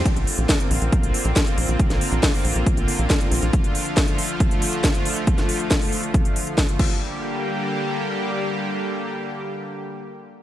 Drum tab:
CC |----------------|----------------|----------------|--------------x-|
HH |xxoxxxoxxxoxxxox|xxoxxooxxxoxxxox|xxoxxxoxxxoxxxox|xxoxxooxxxoxxx--|
SD |----o-------o---|-o--o-------o---|----o-------o---|-o--o-------o---|
BD |o---o---o---o---|o---o---o---o---|o---o---o---o---|o---o---o---o-o-|

CC |----------------|----------------|
HH |----------------|----------------|
SD |----------------|----------------|
BD |----------------|----------------|